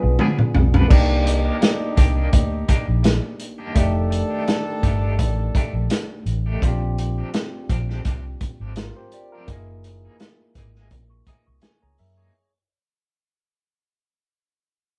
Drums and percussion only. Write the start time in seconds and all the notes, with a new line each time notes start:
0.19 mid tom
0.38 mid tom
0.55 floor tom
0.74 floor tom
0.90 kick, crash
1.27 closed hi-hat
1.62 snare, closed hi-hat
1.97 kick, closed hi-hat
2.33 kick, closed hi-hat
2.69 kick, closed hi-hat
3.04 snare, closed hi-hat
3.40 closed hi-hat
3.76 kick, closed hi-hat
4.12 closed hi-hat
4.48 snare, closed hi-hat
4.83 kick, closed hi-hat
5.19 kick, closed hi-hat
5.55 kick, closed hi-hat
5.90 snare, closed hi-hat
6.26 closed hi-hat
6.62 kick, closed hi-hat
6.98 closed hi-hat
7.34 snare, closed hi-hat
7.69 kick, closed hi-hat
7.90 snare
8.05 kick, closed hi-hat
8.41 kick, closed hi-hat
8.76 snare, closed hi-hat
9.12 closed hi-hat
9.48 kick, closed hi-hat
9.84 closed hi-hat
10.20 snare, closed hi-hat
10.55 kick, closed hi-hat
10.76 snare
10.91 kick, closed hi-hat
11.27 kick, closed hi-hat
11.62 snare, closed hi-hat
11.98 open hi-hat